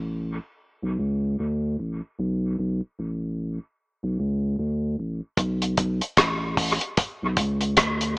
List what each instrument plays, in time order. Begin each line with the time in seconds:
Already playing: sub bass A1
0.82 sub bass B1
0.99 sub bass C#2
1.39 sub bass D2
1.79 sub bass A1
2.19 sub bass B1
2.59 sub bass B1
2.99 sub bass A1
4.03 sub bass B1
4.19 sub bass C#2
4.59 sub bass D2
4.99 sub bass A1
5.37 sub bass B1, kick, closed hi-hat
5.62 closed hi-hat
5.77 sub bass B1, kick, closed hi-hat
6.01 closed hi-hat
6.17 sub bass A1, kick, cross-stick, closed hi-hat
6.57 kick, open hi-hat
6.81 closed hi-hat
6.97 kick, closed hi-hat
7.22 sub bass B1
7.37 sub bass C#2, kick, closed hi-hat
7.61 closed hi-hat
7.77 sub bass D2, kick, cross-stick, closed hi-hat
8.01 closed hi-hat